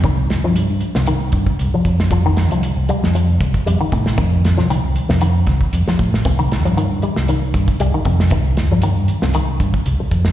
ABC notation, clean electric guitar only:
X:1
M:4/4
L:1/16
Q:"Swing 16ths" 1/4=116
K:Cdor
V:1 name="Clean electric guitar" clef=bass
E,2 z F, z3 C, E,2 z3 F,2 z | F, E,2 F, z2 G,2 F,2 z2 G, E, C,2 | E,2 z F, E,2 z C, E,2 z3 F,2 z | C, E,2 F, E,2 G,2 E,2 z2 G, E, C,2 |
E,2 z F, E,2 z C, E,2 z6 |]